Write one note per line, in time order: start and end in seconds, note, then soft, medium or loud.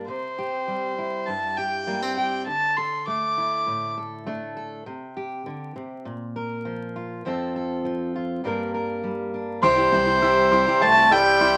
0.08 1.27 C3 soft
0.08 1.28 C5 medium
0.39 1.57 G4 soft
0.68 1.86 G3 soft
0.98 2.50 E4 soft
1.26 2.43 G2 soft
1.26 1.58 A5 medium
1.57 2.16 G4 soft
1.57 2.16 G5 medium
1.87 2.43 G3 medium
1.87 2.02 A#3 soft
2.02 2.47 C4 soft
2.17 2.44 G4 soft
2.17 2.45 G5 medium
2.46 4.82 D3 medium
2.46 2.78 A5 medium
2.77 3.96 A4 soft
2.77 3.07 C6 medium
3.07 4.25 A3 soft
3.07 3.93 D6 medium
3.38 4.83 E4 soft
3.67 4.82 A2 soft
3.98 4.55 A4 soft
4.27 4.82 A3 medium
4.27 4.83 D4 soft
4.57 4.83 A4 soft
4.86 5.46 C3 medium
5.17 6.02 G4 medium
5.46 5.75 D3 soft
5.76 6.05 C3 soft
6.05 7.21 A#2 medium
6.36 7.21 A#4 soft
6.65 7.25 F3 medium
6.96 7.21 F4 soft
7.25 8.43 F2 medium
7.25 7.84 F3 soft
7.25 8.41 C4 soft
7.25 8.14 F4 soft
7.25 7.55 A4 soft
7.56 8.41 A4 medium
7.85 8.44 F3 soft
8.16 8.41 F4 soft
8.44 9.59 G2 medium
8.44 9.02 G3 soft
8.44 9.63 A#3 soft
8.44 9.33 D4 soft
8.44 8.73 A#4 medium
8.74 9.59 A#4 medium
9.04 9.59 G3 soft
9.34 9.60 D4 soft
9.62 9.86 C2 loud
9.62 9.78 C3 medium
9.62 10.84 C3 medium
9.62 11.57 E3 medium
9.62 9.78 G3 medium
9.62 11.57 G3 medium
9.62 11.57 C4 medium
9.62 9.77 C4 medium
9.62 9.77 E4 medium
9.62 11.57 G4 medium
9.62 9.75 G4 medium
9.62 10.83 C5 loud
9.62 10.50 C6 loud
9.77 9.91 C4 soft
9.77 9.92 E4 medium
9.77 9.92 G4 medium
9.92 10.62 C2 loud
9.92 10.07 G3 medium
9.92 10.07 C4 medium
9.92 10.06 E4 medium
9.92 10.05 G4 medium
9.92 10.80 G5 medium
10.06 10.21 C4 soft
10.06 10.21 E4 medium
10.06 10.21 G4 medium
10.22 10.51 C3 medium
10.22 10.50 G3 medium
10.22 10.50 C4 medium
10.22 10.51 E4 medium
10.22 10.51 G4 medium
10.22 11.09 E5 medium
10.51 10.66 G3 medium
10.51 10.66 C4 medium
10.51 10.66 E4 medium
10.51 10.65 G4 medium
10.51 11.39 C6 loud
10.66 10.96 C4 soft
10.66 10.96 E4 medium
10.66 10.94 G4 medium
10.81 11.57 C2 loud
10.81 11.13 A3 loud
10.81 11.57 G5 medium
10.81 11.14 A5 loud
10.96 11.11 C4 medium
10.96 11.11 E4 soft
10.96 11.11 G4 medium
11.11 11.39 G3 medium
11.11 11.57 G3 loud
11.11 11.40 C4 medium
11.11 11.40 E4 medium
11.11 11.41 G4 medium
11.11 11.57 E5 medium
11.11 11.57 G5 loud
11.40 11.57 C3 medium
11.40 11.57 G3 medium
11.40 11.57 C4 medium
11.40 11.57 E4 medium
11.40 11.57 G4 loud
11.40 11.57 C6 medium